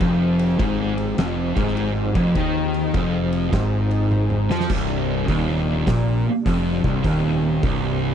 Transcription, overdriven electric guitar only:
0.01 F2
0.59 G#2
1.18 F2
1.57 G#2
2.16 F2
2.36 D#3
2.95 F2
3.53 G#2
4.51 F3
4.71 C2
5.29 D#2
5.88 A#2
6.46 F2
6.85 C2
7.05 D#2
7.64 C2

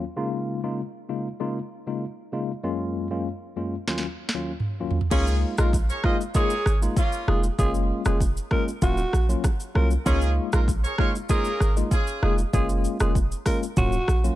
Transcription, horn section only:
5.11 C#4 F4 G#4
5.58 C#4 F4 A#4
5.89 G#4 A#4 C#5
6.04 G#4 C5 D#5
6.35 G#4 A#4 C#5
6.97 A#3 C#4 F4
10.06 C#4 F4 G#4
10.53 C#4 F4 A#4
10.84 G#4 A#4 C#5
10.99 G#4 A#4 C#5
11.29 C#4 F4 A#4
11.91 C#4 F4 G#4

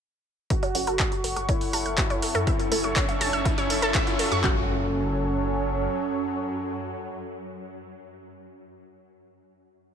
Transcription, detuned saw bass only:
0.75 F#1
0.87 F#1
1.24 F#1
1.37 F#1
1.61 F#1
1.73 F#1
1.86 F#1
2.10 F#1
2.35 F#2
2.72 F#1
2.84 F#1
3.21 F#1
3.33 F#1
3.58 F#1
3.70 F#1
3.82 F#1
4.07 F#1
4.32 F#2
4.44 F#1

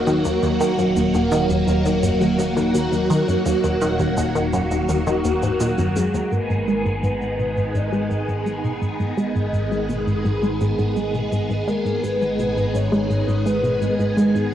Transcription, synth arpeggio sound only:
0.07 D#3
0.25 D#2
0.42 D#2
0.61 D#3
0.78 F#2
0.96 D#2
1.14 D#2
1.32 D#3
1.50 D#2
1.67 D#2
1.85 D#3
2.03 F#2
2.21 D#2
2.39 D#2
2.57 D#3
2.74 D#2
2.92 D#2
3.10 D#3
3.28 F#2
3.46 D#2
3.64 D#2
3.82 D#3
4.00 D#2
4.17 D#2
4.35 D#3
4.53 F#2
4.71 D#2
4.89 D#2
5.07 D#3
5.25 D#2
5.43 G#2
5.60 A#2
5.78 F#2
5.96 F#2
6.14 D#2
6.32 G#2
6.50 G#2
6.68 G#3
6.86 G#2
7.03 G#2
7.21 G#3
7.39 B2
7.57 G#2
7.75 G#2
7.92 G#3
8.10 G#2
8.28 G#2
8.46 G#3
8.64 B2
8.81 G#2
9.00 G#2
9.17 G#3
9.35 G#2
9.53 G#2
9.71 G#3
9.89 B2
10.07 G#2
10.25 G#2
10.43 G#3
10.61 G#2
10.79 G#2
10.97 G#3
11.14 B2
11.32 G#2
11.50 G#2
11.68 G#3
11.85 G#2
12.04 G#2
12.21 G#3
12.39 B2
12.57 G#2
12.74 G#2
12.92 G#3
13.10 G#2
13.28 G#2
13.46 G#3
13.64 B2
13.81 G#2
14.00 G#2
14.17 G#3
14.35 G#2

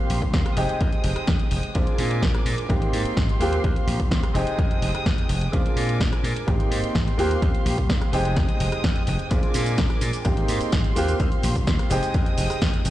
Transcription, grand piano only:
Already playing: A#3 C4 F4 G4
0.57 G#3 C4 D#4 G4
1.75 G#3 C4 D4 F4
2.69 A#3 C4 D#4 G4
3.40 A#3 C4 F4 G4
4.34 G#3 C4 D#4 G4
5.52 G#3 C4 D4 F4
6.47 A#3 C4 D#4 G4
7.18 A#3 C4 F4 G4
8.12 G#3 C4 D#4 G4
9.30 G#3 C4 D4 F4
10.25 A#3 C4 D#4 G4
10.96 A#3 C4 F4 G4
11.90 G#3 C4 D#4 G4

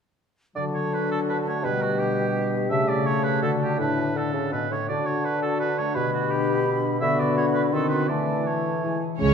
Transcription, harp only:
0.57 D3
0.75 D4
0.93 F#4
1.11 A4
1.29 F#4
1.46 A3
1.64 B2
1.82 D4
2.00 G4
2.19 B4
2.36 G4
2.54 B3
2.71 C#3
2.88 E4
3.07 G4
3.24 A4
3.42 D3
3.61 F#4 A4
3.80 A2
3.97 D4
4.16 E4
4.34 A4
4.52 A2
4.71 E4 A4
4.89 D3
5.08 D4
5.26 F#4
5.62 F#4
5.79 A3
5.96 B2
6.13 D4
6.31 G4
6.49 B4
6.67 G4
6.84 B3
7.02 D3
7.19 D4
7.37 F#4
7.55 B4
7.74 D#3
7.92 F#4 A4
8.11 E3
8.30 E4
8.48 A4
8.66 E4
8.85 E3
9.03 E4 G#4
9.22 A2

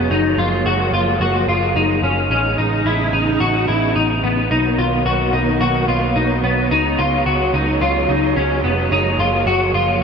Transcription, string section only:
Already playing: F#3 G#3
0.11 F3 A#3
2.31 C#3 B3 D#4
4.51 D#3 F#3 A#3
6.71 C#3 G#3
8.91 F3 A#3

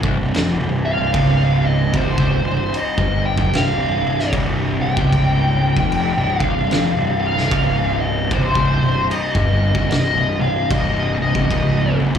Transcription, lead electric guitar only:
0.85 F5
1.65 D#5
1.96 C5
2.78 D#5
3.25 G5
3.56 F5
4.82 G5
6.40 F5
7.21 F5
8.00 D#5
8.32 C5
9.12 D#5
9.90 D#5
10.41 F5
10.72 D#5
11.22 D#5

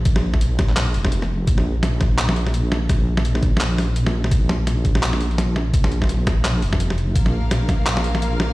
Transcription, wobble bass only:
0.06 A#1
0.95 F1
1.48 A#1
2.89 A#1
4.32 A#1
5.74 A#1
6.62 F1
7.16 A#1

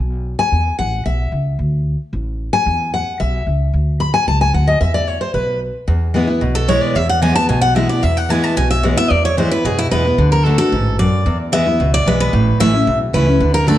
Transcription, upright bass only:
0.00 B1
0.52 E2
0.79 A1
1.06 B1
1.32 C#2
1.59 D2
2.13 A1
2.66 E2
3.20 B1
3.47 C#2
3.73 D2
4.27 C#2
4.54 D2
4.81 E2
5.34 B1
5.88 E2
6.42 B1
6.95 E2
7.50 B1
8.03 E2
8.57 B1
9.10 E2
9.65 F#2
9.92 E2
10.18 D2
10.72 A1
11.26 E2
11.79 C#2
12.06 B1
12.33 A1
12.60 A1
12.87 B1
13.14 C#2
13.40 D2

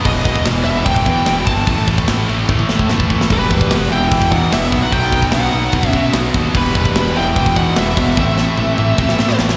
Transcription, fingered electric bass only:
0.06 E1
0.46 E1
0.67 E1
0.86 E1
1.06 E2
1.27 E1
1.48 G1
1.67 A1
2.09 A1
2.29 A1
2.49 A1
2.71 A2
2.91 A1
3.11 A1
3.31 E1
3.72 E1
3.92 E1
4.11 E1
4.32 E2
4.52 E1
4.72 B1
4.92 B1
5.33 B1
5.54 B1
5.73 B1
5.94 B2
6.15 B1
6.35 D#2
6.55 E1
6.96 E1
7.17 E1
7.36 E1
7.57 E2
7.78 E1
7.97 E1
8.18 A1
8.59 A1
8.79 A1
8.99 A1
9.20 A2
9.40 A1

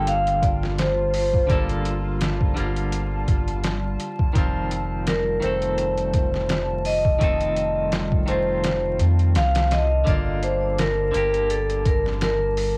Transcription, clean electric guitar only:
Already playing: D3 G3 A#3 A4
1.47 D3 G3 A#3
1.52 A4
2.54 D3 G3 A#3
2.60 F4
4.33 D#3 F3 C4
4.38 F4
5.40 D#3 A3 C4
5.45 A4
7.19 D#3 A3 C4
7.24 A4
8.26 D#3 A3 C4
8.31 F4
10.04 D3 A#3
10.09 F4
11.11 D3 A#3
11.17 G4

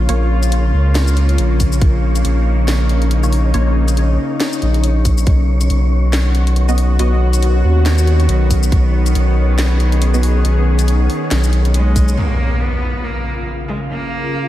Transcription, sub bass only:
0.09 A#1
0.74 C#2
1.38 A#1
1.82 A#1
2.25 A#1
3.54 A#1
4.62 A#1
5.27 B1
5.70 B1
6.99 B1
7.64 D#2
8.29 B1
8.72 B1
9.15 B1
10.45 B1
11.31 B1

